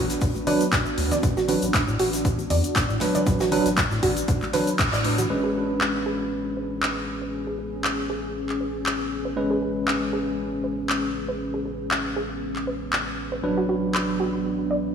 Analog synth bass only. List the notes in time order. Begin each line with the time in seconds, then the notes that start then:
Already playing: A1
0.21 A1
0.98 D2
1.23 A1
1.62 A1
1.88 A2
2.00 A1
2.50 E2
2.90 A2
3.27 A1
3.66 A1
3.91 A2
4.03 A1
4.28 A1
4.93 A2
5.30 A1
13.44 A1